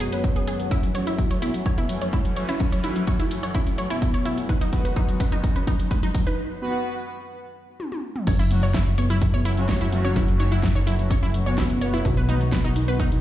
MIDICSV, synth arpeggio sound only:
0, 0, Header, 1, 2, 480
1, 0, Start_track
1, 0, Tempo, 472441
1, 723, Time_signature, 4, 2, 24, 8
1, 13420, End_track
2, 0, Start_track
2, 0, Title_t, "Synth arpeggio sound"
2, 0, Program_c, 0, 84
2, 3, Note_on_c, 0, 68, 103
2, 34, Note_off_c, 0, 68, 0
2, 127, Note_on_c, 0, 71, 77
2, 156, Note_off_c, 0, 71, 0
2, 367, Note_on_c, 0, 68, 79
2, 416, Note_off_c, 0, 68, 0
2, 483, Note_on_c, 0, 68, 77
2, 561, Note_off_c, 0, 68, 0
2, 724, Note_on_c, 0, 64, 105
2, 775, Note_off_c, 0, 64, 0
2, 964, Note_on_c, 0, 73, 78
2, 1041, Note_off_c, 0, 73, 0
2, 1087, Note_on_c, 0, 64, 94
2, 1136, Note_off_c, 0, 64, 0
2, 1327, Note_on_c, 0, 73, 75
2, 1400, Note_off_c, 0, 73, 0
2, 1444, Note_on_c, 0, 64, 101
2, 1495, Note_off_c, 0, 64, 0
2, 1684, Note_on_c, 0, 73, 84
2, 1761, Note_off_c, 0, 73, 0
2, 1807, Note_on_c, 0, 64, 102
2, 1856, Note_off_c, 0, 64, 0
2, 2047, Note_on_c, 0, 73, 77
2, 2120, Note_off_c, 0, 73, 0
2, 2163, Note_on_c, 0, 64, 106
2, 2215, Note_off_c, 0, 64, 0
2, 2403, Note_on_c, 0, 73, 78
2, 2481, Note_off_c, 0, 73, 0
2, 2527, Note_on_c, 0, 64, 101
2, 2576, Note_off_c, 0, 64, 0
2, 2767, Note_on_c, 0, 73, 76
2, 2840, Note_off_c, 0, 73, 0
2, 2883, Note_on_c, 0, 64, 102
2, 2935, Note_off_c, 0, 64, 0
2, 3123, Note_on_c, 0, 73, 86
2, 3201, Note_off_c, 0, 73, 0
2, 3247, Note_on_c, 0, 64, 102
2, 3295, Note_off_c, 0, 64, 0
2, 3486, Note_on_c, 0, 73, 83
2, 3560, Note_off_c, 0, 73, 0
2, 3603, Note_on_c, 0, 64, 106
2, 3655, Note_off_c, 0, 64, 0
2, 3843, Note_on_c, 0, 73, 80
2, 3921, Note_off_c, 0, 73, 0
2, 3966, Note_on_c, 0, 64, 107
2, 4015, Note_off_c, 0, 64, 0
2, 4206, Note_on_c, 0, 73, 76
2, 4280, Note_off_c, 0, 73, 0
2, 4322, Note_on_c, 0, 64, 104
2, 4375, Note_off_c, 0, 64, 0
2, 4563, Note_on_c, 0, 71, 87
2, 4641, Note_off_c, 0, 71, 0
2, 4687, Note_on_c, 0, 63, 103
2, 4736, Note_off_c, 0, 63, 0
2, 4927, Note_on_c, 0, 71, 77
2, 5000, Note_off_c, 0, 71, 0
2, 5043, Note_on_c, 0, 63, 101
2, 5095, Note_off_c, 0, 63, 0
2, 5283, Note_on_c, 0, 71, 76
2, 5361, Note_off_c, 0, 71, 0
2, 5407, Note_on_c, 0, 63, 103
2, 5456, Note_off_c, 0, 63, 0
2, 5647, Note_on_c, 0, 71, 80
2, 5720, Note_off_c, 0, 71, 0
2, 5764, Note_on_c, 0, 63, 103
2, 5815, Note_off_c, 0, 63, 0
2, 6003, Note_on_c, 0, 71, 86
2, 6081, Note_off_c, 0, 71, 0
2, 6127, Note_on_c, 0, 63, 100
2, 6176, Note_off_c, 0, 63, 0
2, 6368, Note_on_c, 0, 71, 77
2, 6441, Note_off_c, 0, 71, 0
2, 8404, Note_on_c, 0, 73, 83
2, 8481, Note_off_c, 0, 73, 0
2, 8527, Note_on_c, 0, 64, 104
2, 8576, Note_off_c, 0, 64, 0
2, 8767, Note_on_c, 0, 73, 76
2, 8840, Note_off_c, 0, 73, 0
2, 8884, Note_on_c, 0, 64, 103
2, 8935, Note_off_c, 0, 64, 0
2, 9123, Note_on_c, 0, 73, 77
2, 9201, Note_off_c, 0, 73, 0
2, 9247, Note_on_c, 0, 64, 105
2, 9296, Note_off_c, 0, 64, 0
2, 9487, Note_on_c, 0, 73, 78
2, 9560, Note_off_c, 0, 73, 0
2, 9603, Note_on_c, 0, 64, 106
2, 9655, Note_off_c, 0, 64, 0
2, 9843, Note_on_c, 0, 73, 84
2, 9921, Note_off_c, 0, 73, 0
2, 9966, Note_on_c, 0, 64, 107
2, 10016, Note_off_c, 0, 64, 0
2, 10206, Note_on_c, 0, 73, 78
2, 10280, Note_off_c, 0, 73, 0
2, 10323, Note_on_c, 0, 64, 106
2, 10375, Note_off_c, 0, 64, 0
2, 10563, Note_on_c, 0, 73, 76
2, 10641, Note_off_c, 0, 73, 0
2, 10686, Note_on_c, 0, 64, 100
2, 10735, Note_off_c, 0, 64, 0
2, 10926, Note_on_c, 0, 73, 77
2, 11000, Note_off_c, 0, 73, 0
2, 11043, Note_on_c, 0, 64, 101
2, 11095, Note_off_c, 0, 64, 0
2, 11283, Note_on_c, 0, 73, 86
2, 11361, Note_off_c, 0, 73, 0
2, 11407, Note_on_c, 0, 64, 100
2, 11456, Note_off_c, 0, 64, 0
2, 11647, Note_on_c, 0, 73, 76
2, 11720, Note_off_c, 0, 73, 0
2, 11763, Note_on_c, 0, 64, 103
2, 11815, Note_off_c, 0, 64, 0
2, 12003, Note_on_c, 0, 73, 74
2, 12081, Note_off_c, 0, 73, 0
2, 12127, Note_on_c, 0, 64, 106
2, 12176, Note_off_c, 0, 64, 0
2, 12367, Note_on_c, 0, 71, 79
2, 12440, Note_off_c, 0, 71, 0
2, 12483, Note_on_c, 0, 63, 106
2, 12535, Note_off_c, 0, 63, 0
2, 12723, Note_on_c, 0, 71, 85
2, 12801, Note_off_c, 0, 71, 0
2, 12846, Note_on_c, 0, 63, 102
2, 12895, Note_off_c, 0, 63, 0
2, 13087, Note_on_c, 0, 71, 80
2, 13160, Note_off_c, 0, 71, 0
2, 13203, Note_on_c, 0, 63, 103
2, 13255, Note_off_c, 0, 63, 0
2, 13420, End_track
0, 0, End_of_file